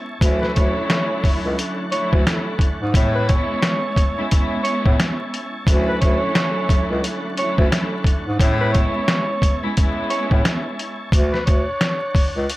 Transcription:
0.00 0.19 E4 medium
0.00 2.90 C#5 medium
0.00 0.19 G#5 medium
0.00 2.90 A5 medium
0.21 0.49 D2 loud
0.21 2.91 D3 medium
0.21 1.81 F#3 loud
0.21 1.81 A3 medium
0.21 1.81 C#4 medium
0.21 1.81 E4 loud
0.21 2.91 F#5 medium
0.21 kick loud
0.21 closed hi-hat loud
0.41 0.54 B4 medium
0.41 snare soft
0.55 0.73 D2 medium
0.55 1.53 C#5 medium
0.55 kick medium
0.55 closed hi-hat medium
0.90 snare loud
0.90 closed hi-hat medium
1.24 kick loud
1.24 open hi-hat medium
1.45 1.56 C#2 medium
1.59 closed hi-hat loud
1.91 2.72 F#3 medium
1.91 2.72 A3 medium
1.91 2.72 C#4 medium
1.91 2.72 E4 loud
1.91 2.10 C#5 medium
1.91 closed hi-hat medium
2.13 2.24 D2 loud
2.13 kick loud
2.27 snare loud
2.27 closed hi-hat medium
2.59 kick medium
2.59 closed hi-hat medium
2.82 2.92 G#2 medium
2.93 3.38 A2 loud
2.93 4.05 G#3 loud
2.93 4.05 B3 medium
2.93 4.05 C#4 medium
2.93 4.06 E4 loud
2.93 5.64 E4 medium
2.93 8.36 C#5 medium
2.93 5.64 G#5 medium
2.93 12.57 A5 medium
2.93 kick loud
2.93 closed hi-hat loud
3.15 3.27 B4 medium
3.29 4.27 C#5 medium
3.29 kick loud
3.29 closed hi-hat medium
3.62 snare loud
3.62 closed hi-hat medium
3.96 kick loud
3.96 closed hi-hat medium
4.17 4.30 G#3 medium
4.17 4.31 B3 medium
4.17 4.31 C#4 medium
4.17 4.31 E4 loud
4.31 5.42 G#3 loud
4.31 5.43 B3 loud
4.31 5.43 C#4 loud
4.31 5.43 E4 loud
4.31 kick loud
4.31 closed hi-hat loud
4.63 4.83 C#5 medium
4.63 closed hi-hat medium
4.86 4.96 A2 medium
4.86 kick loud
5.00 snare loud
5.00 closed hi-hat medium
5.34 closed hi-hat medium
5.66 5.94 D2 loud
5.66 8.37 D3 medium
5.66 7.26 F#3 loud
5.66 7.27 A3 medium
5.66 7.27 C#4 medium
5.66 7.27 E4 loud
5.66 8.37 F#5 medium
5.66 kick loud
5.66 closed hi-hat loud
5.89 6.00 B4 medium
6.01 6.19 D2 medium
6.01 6.99 C#5 medium
6.01 kick medium
6.01 closed hi-hat medium
6.35 snare loud
6.35 closed hi-hat medium
6.69 kick medium
6.69 closed hi-hat medium
6.91 7.01 C#2 medium
7.04 closed hi-hat loud
7.37 8.18 F#3 medium
7.37 8.18 A3 medium
7.37 8.18 C#4 medium
7.37 8.18 E4 loud
7.37 7.57 C#5 medium
7.37 closed hi-hat medium
7.58 7.69 D2 loud
7.58 kick loud
7.72 snare loud
7.72 closed hi-hat medium
8.04 kick medium
8.04 closed hi-hat medium
8.27 8.37 G#2 medium
8.39 8.84 A2 loud
8.39 9.51 G#3 loud
8.39 9.51 B3 medium
8.39 9.51 C#4 medium
8.39 9.51 E4 loud
8.39 11.10 E4 medium
8.39 12.57 C#5 medium
8.39 11.10 G#5 medium
8.39 kick loud
8.39 closed hi-hat loud
8.61 8.72 B4 medium
8.72 9.71 C#5 medium
8.72 kick medium
8.72 closed hi-hat medium
9.08 snare loud
9.08 closed hi-hat medium
9.42 kick loud
9.42 closed hi-hat medium
9.63 9.76 G#3 medium
9.63 9.76 B3 medium
9.63 9.76 C#4 medium
9.63 9.77 E4 loud
9.77 10.88 G#3 loud
9.77 10.88 B3 loud
9.77 10.88 C#4 loud
9.77 10.88 E4 loud
9.77 kick loud
9.77 closed hi-hat loud
10.10 10.29 C#5 medium
10.10 closed hi-hat medium
10.31 10.42 A2 medium
10.31 kick loud
10.45 snare loud
10.45 closed hi-hat medium
10.79 closed hi-hat medium
11.12 11.40 D2 loud
11.12 12.57 D4 medium
11.12 12.57 F#5 medium
11.12 kick loud
11.12 closed hi-hat loud
11.32 11.45 B4 medium
11.32 snare soft
11.46 11.64 D2 medium
11.46 12.44 C#5 medium
11.46 kick loud
11.46 closed hi-hat medium
11.81 snare loud
11.81 closed hi-hat medium
12.15 kick loud
12.15 open hi-hat medium
12.36 12.46 C#2 loud
12.50 closed hi-hat loud

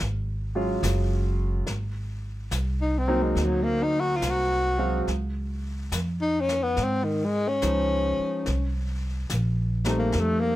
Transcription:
0.00 0.81 G#1 medium
0.55 0.81 F#3 medium
0.55 0.81 G#3 medium
0.55 0.81 C#4 soft
0.55 0.81 F4 medium
0.83 1.65 F#1 medium
0.83 snare medium
0.83 hi-hat pedal soft
1.67 2.50 G#1 medium
1.67 brush sweep soft
1.67 snare soft
2.51 3.34 C2 medium
2.51 snare soft
2.51 hi-hat pedal soft
2.81 3.00 D#4 medium
2.98 3.24 C4 medium
3.08 3.34 F#3 medium
3.08 3.34 A#3 medium
3.08 3.34 C4 medium
3.08 3.34 D#4 medium
3.23 3.46 G#3 medium
3.35 4.19 D2 medium
3.35 brush sweep soft
3.35 snare soft
3.44 3.65 F#3 medium
3.64 3.85 A#3 medium
3.83 4.02 D#4 medium
4.00 4.17 F#4 medium
4.16 4.32 F4 medium
4.21 5.04 C2 medium
4.21 snare soft
4.21 hi-hat pedal soft
4.30 5.12 F#4 medium
4.78 5.04 F#3 medium
4.78 5.04 G#3 medium
4.78 5.05 C4 soft
4.78 5.05 F5 medium
5.07 5.90 C#2 medium
5.07 brush sweep soft
5.07 snare soft
5.92 6.74 F2 medium
5.92 snare soft
5.92 hi-hat pedal medium
6.21 6.42 D#4 medium
6.41 6.64 C#4 medium
6.49 snare soft
6.63 6.85 B3 medium
6.77 7.59 G#2 medium
6.77 brush sweep soft
6.77 snare soft
6.84 7.06 C4 medium
7.04 7.26 D#3 medium
7.25 7.50 G#3 medium
7.48 8.74 C#4 medium
7.62 8.14 C#2 medium
7.62 8.46 F3 soft
7.62 8.46 G#3 soft
7.62 8.46 D#4 medium
7.62 8.46 C5 soft
7.62 snare soft
7.62 hi-hat pedal soft
8.19 muted upright bass stroke soft
8.46 9.28 C2 medium
8.46 brush sweep soft
8.46 snare soft
9.30 10.11 A#1 medium
9.30 snare soft
9.30 hi-hat pedal soft
9.85 10.56 G3 medium
9.85 10.56 A3 medium
9.85 10.56 C4 soft
9.85 10.56 D#4 medium
9.85 snare soft
9.99 10.22 A#3 medium
10.12 10.56 F2 medium
10.12 brush sweep soft
10.12 snare soft
10.20 10.42 A3 medium
10.40 10.56 A#3 medium

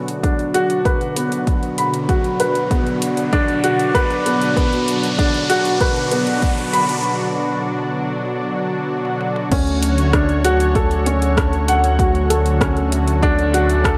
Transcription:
0.00 7.04 D2 medium
0.00 9.47 B2 medium
0.00 9.47 D3 medium
0.00 9.48 F#3 medium
0.00 9.47 D4 medium
0.00 9.48 F#4 medium
0.00 riser medium
0.08 closed hi-hat soft
0.23 0.53 D4 medium
0.23 kick loud
0.23 closed hi-hat soft
0.39 closed hi-hat soft
0.54 0.84 F#4 medium
0.54 closed hi-hat medium
0.70 closed hi-hat soft
0.85 1.03 B4 medium
0.85 kick loud
0.85 closed hi-hat soft
1.01 closed hi-hat soft
1.16 1.46 B3 medium
1.16 closed hi-hat medium
1.32 closed hi-hat soft
1.47 kick loud
1.47 closed hi-hat soft
1.63 closed hi-hat soft
1.78 2.08 B5 medium
1.78 closed hi-hat medium
1.94 closed hi-hat soft
2.09 2.27 F#4 medium
2.09 kick medium
2.09 closed hi-hat soft
2.24 closed hi-hat soft
2.40 2.70 B4 medium
2.40 closed hi-hat medium
2.55 closed hi-hat soft
2.71 3.00 B3 medium
2.71 kick loud
2.71 closed hi-hat soft
2.87 closed hi-hat soft
3.02 closed hi-hat medium
3.17 closed hi-hat soft
3.33 3.51 D4 loud
3.33 kick medium
3.33 closed hi-hat soft
3.48 closed hi-hat soft
3.64 3.93 F#4 loud
3.64 closed hi-hat medium
3.79 closed hi-hat soft
3.95 4.12 B4 loud
3.95 kick medium
3.95 closed hi-hat soft
4.10 closed hi-hat soft
4.26 4.43 B3 medium
4.26 closed hi-hat medium
4.42 closed hi-hat soft
4.57 4.74 B3 medium
4.57 kick loud
4.57 closed hi-hat soft
4.73 closed hi-hat soft
4.88 closed hi-hat medium
5.03 closed hi-hat soft
5.19 5.48 D4 medium
5.19 kick loud
5.19 closed hi-hat soft
5.34 closed hi-hat soft
5.50 5.79 F#4 loud
5.50 closed hi-hat medium
5.65 closed hi-hat soft
5.80 5.98 B4 medium
5.80 kick loud
5.80 closed hi-hat soft
5.96 closed hi-hat soft
6.11 6.41 B3 medium
6.11 closed hi-hat medium
6.27 closed hi-hat soft
6.42 kick loud
6.42 closed hi-hat soft
6.58 closed hi-hat soft
6.73 7.03 B5 medium
6.73 closed hi-hat medium
6.89 closed hi-hat soft
9.05 high tom medium
9.21 mid tom medium
9.36 mid tom medium
9.52 13.98 D2 medium
9.52 13.98 D3 medium
9.52 13.98 F#3 medium
9.52 13.98 A3 medium
9.52 9.69 C#4 medium
9.52 13.98 F#4 medium
9.52 13.98 C#5 medium
9.52 kick loud
9.52 closed hi-hat soft
9.52 crash loud
9.67 closed hi-hat soft
9.82 closed hi-hat medium
9.98 closed hi-hat soft
10.13 10.43 D4 medium
10.13 kick loud
10.13 cross-stick medium
10.13 closed hi-hat soft
10.29 closed hi-hat soft
10.44 10.74 F#4 loud
10.44 closed hi-hat medium
10.60 closed hi-hat soft
10.75 10.93 A4 medium
10.75 kick loud
10.75 closed hi-hat soft
10.91 closed hi-hat soft
11.06 11.36 C#4 medium
11.06 closed hi-hat medium
11.22 closed hi-hat soft
11.37 kick loud
11.37 cross-stick loud
11.37 closed hi-hat soft
11.53 closed hi-hat soft
11.68 11.98 F#5 medium
11.68 closed hi-hat medium
11.84 closed hi-hat soft
11.99 12.17 F#4 medium
11.99 kick loud
11.99 closed hi-hat soft
12.15 closed hi-hat soft
12.30 12.59 A4 medium
12.30 closed hi-hat medium
12.46 closed hi-hat soft
12.61 12.90 C#4 medium
12.61 kick loud
12.61 cross-stick loud
12.61 closed hi-hat soft
12.77 closed hi-hat soft
12.92 closed hi-hat medium
13.08 closed hi-hat soft
13.23 13.40 D4 loud
13.23 kick loud
13.23 closed hi-hat soft
13.39 closed hi-hat soft
13.54 13.83 F#4 medium
13.54 closed hi-hat medium
13.70 closed hi-hat soft
13.84 13.98 A4 loud
13.84 kick loud
13.84 cross-stick medium
13.84 closed hi-hat soft

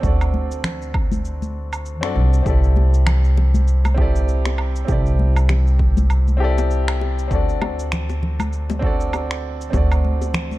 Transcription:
0.00 2.03 D2 medium
0.00 2.01 C4 medium
0.00 0.02 D4 medium
0.00 1.51 D4 medium
0.00 0.04 F#4 medium
0.00 1.52 F#4 medium
0.00 0.05 A4 medium
0.00 0.07 D5 loud
0.00 kick loud
0.00 cabasa medium
0.05 1.53 A4 medium
0.05 1.54 D5 medium
0.21 cabasa soft
0.21 low woodblock medium
0.34 high conga medium
0.51 cabasa medium
0.64 finger snap medium
0.64 low conga medium
0.64 cabasa medium
0.82 cabasa soft
0.94 kick loud
0.94 low woodblock medium
1.12 high conga medium
1.12 cabasa medium
1.25 cabasa medium
1.42 high conga medium
1.42 cabasa soft
1.73 cabasa medium
1.73 low woodblock medium
1.86 cabasa medium
2.01 2.17 F#2 medium
2.01 2.41 C4 medium
2.01 2.42 D4 medium
2.01 2.43 F#4 medium
2.01 2.43 A4 medium
2.01 2.44 D5 medium
2.01 finger snap medium
2.01 cabasa soft
2.15 2.41 C2 medium
2.33 cabasa medium
2.42 4.85 C2 medium
2.42 3.93 C4 medium
2.42 3.94 E4 medium
2.42 3.94 G4 medium
2.42 kick loud
2.42 cabasa medium
2.48 3.95 A4 medium
2.48 3.96 D5 medium
2.64 cabasa soft
2.76 high bongo soft
2.76 high conga medium
2.94 cabasa medium
3.06 finger snap medium
3.06 low conga medium
3.06 cabasa medium
3.06 low woodblock medium
3.24 cabasa soft
3.37 high bongo medium
3.37 low conga medium
3.54 high conga medium
3.54 cabasa medium
3.68 cabasa medium
3.85 high bongo soft
3.85 high conga medium
3.85 cabasa soft
3.85 low woodblock medium
3.94 4.83 C4 medium
3.94 4.85 E4 medium
3.94 4.86 G4 medium
3.94 kick medium
4.00 4.87 A4 medium
4.00 4.87 D5 medium
4.16 cabasa medium
4.28 cabasa medium
4.46 finger snap medium
4.46 high bongo medium
4.46 cabasa soft
4.58 low woodblock medium
4.76 cabasa medium
4.85 7.27 C2 medium
4.85 6.35 C4 medium
4.85 6.36 E4 medium
4.85 6.37 G4 medium
4.85 kick loud
4.85 high bongo soft
4.85 cabasa soft
4.90 6.38 A4 medium
4.90 6.39 D5 medium
5.06 cabasa soft
5.19 high conga medium
5.36 cabasa medium
5.36 low woodblock medium
5.49 finger snap medium
5.49 high bongo medium
5.49 low conga medium
5.49 cabasa soft
5.67 cabasa soft
5.79 kick medium
5.97 high bongo soft
5.97 high conga medium
5.97 cabasa medium
6.10 cabasa soft
6.10 low woodblock medium
6.28 high conga medium
6.28 cabasa soft
6.37 7.26 C4 medium
6.37 7.27 E4 medium
6.37 7.28 G4 medium
6.42 7.29 A4 medium
6.42 7.30 D5 loud
6.58 high bongo medium
6.58 cabasa medium
6.71 cabasa soft
6.88 finger snap medium
6.88 cabasa soft
6.88 low woodblock medium
7.01 high bongo medium
7.19 cabasa medium
7.28 9.70 D2 medium
7.28 8.78 C4 medium
7.28 8.79 D4 medium
7.28 8.80 F#4 medium
7.28 kick loud
7.28 cabasa soft
7.33 8.80 A4 medium
7.33 8.81 D5 medium
7.49 cabasa soft
7.62 high bongo medium
7.62 high conga medium
7.62 low woodblock medium
7.79 cabasa medium
7.92 finger snap medium
7.92 low conga medium
7.92 cabasa medium
8.10 high bongo medium
8.10 cabasa soft
8.23 low conga medium
8.40 high conga medium
8.40 cabasa medium
8.40 low woodblock medium
8.53 cabasa soft
8.70 high bongo medium
8.70 high conga medium
8.70 cabasa soft
8.79 9.69 C4 medium
8.79 9.70 D4 medium
8.79 9.70 F#4 medium
8.79 kick medium
8.84 9.71 A4 medium
8.84 9.72 D5 loud
9.01 cabasa medium
9.13 high bongo medium
9.13 cabasa soft
9.13 low woodblock medium
9.31 finger snap medium
9.31 cabasa soft
9.61 cabasa medium
9.70 10.58 D2 loud
9.70 10.58 C4 medium
9.70 10.58 D4 medium
9.70 10.58 F#4 medium
9.70 kick loud
9.70 high bongo medium
9.70 cabasa medium
9.75 10.58 A4 medium
9.75 10.58 D5 medium
9.92 cabasa soft
9.92 low woodblock medium
10.05 high conga medium
10.21 high bongo soft
10.21 cabasa medium
10.34 finger snap medium
10.34 low conga medium
10.34 cabasa medium
10.51 high conga medium
10.51 cabasa soft

